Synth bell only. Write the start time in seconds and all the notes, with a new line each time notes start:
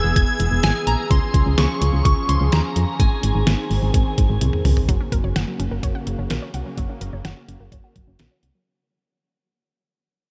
0.16 G#6
0.63 G#5
0.87 A#5
1.11 C6
1.58 C#6
2.05 C#6
2.29 C6
2.53 A#5
3.00 G#5